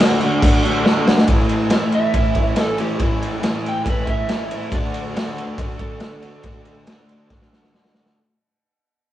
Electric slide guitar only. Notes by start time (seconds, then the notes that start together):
1.95 E5
2.61 A4
2.80 G4
3.03 E4
3.68 G5
3.90 B4
4.10 E5
4.74 D5
5.37 B4
5.81 A4